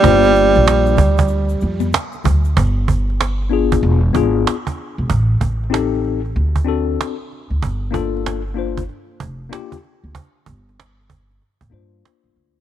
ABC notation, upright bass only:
X:1
M:4/4
L:1/16
Q:"Swing 16ths" 1/4=95
K:Gm
V:1 name="Upright bass" clef=bass
G,,,3 B,,,3 D,,4 F,,2 z2 D,,2 | G,,,8 =E,,,2 z4 z E,,, | A,,,2 A,,,6 D,,4 z3 D,, | G,,,8 z2 F,,,2 z3 D,, |
z2 G,,,6 z A,,, G,,2 z G,,, D,,2 |]